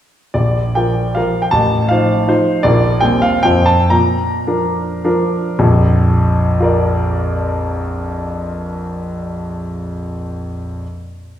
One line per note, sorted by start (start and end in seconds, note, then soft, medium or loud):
0.34 0.75 A#1 soft
0.34 0.76 D5 medium
0.75 1.12 F3 soft
0.75 1.12 F4 soft
0.75 1.12 A#4 soft
0.75 1.16 G5 medium
1.15 1.49 F3 medium
1.15 1.49 F4 medium
1.15 1.49 A#4 medium
1.15 1.43 F5 medium
1.42 1.52 G5 medium
1.51 1.89 A1 medium
1.51 1.89 A5 medium
1.89 2.25 F3 soft
1.89 2.25 D#4 soft
1.89 2.25 C5 soft
1.89 2.65 F5 medium
2.28 2.61 F3 medium
2.28 2.61 D#4 medium
2.28 2.62 C5 medium
2.63 3.02 A#1 medium
2.63 2.99 F3 soft
2.63 2.99 D4 soft
2.63 3.00 A#4 soft
2.63 3.02 D5 medium
3.00 3.43 D#2 medium
3.00 3.41 G3 soft
3.00 3.41 C4 soft
3.00 3.41 C5 soft
3.00 3.23 G5 medium
3.22 3.44 F5 medium
3.43 3.91 F2 medium
3.43 3.88 F3 medium
3.43 3.88 C4 medium
3.43 3.89 C5 soft
3.43 3.67 G5 medium
3.66 3.91 A5 medium
3.90 4.45 A#2 medium
3.90 5.32 A#5 medium
4.47 5.01 F3 soft
4.47 5.01 D4 soft
4.47 5.01 A#4 soft
5.04 5.56 F3 medium
5.04 5.55 D4 medium
5.04 5.56 A#4 medium
5.59 9.94 A#1 medium
5.59 9.94 F2 medium
6.60 10.15 F4 medium
6.60 10.16 A#4 medium
6.64 10.17 D5 medium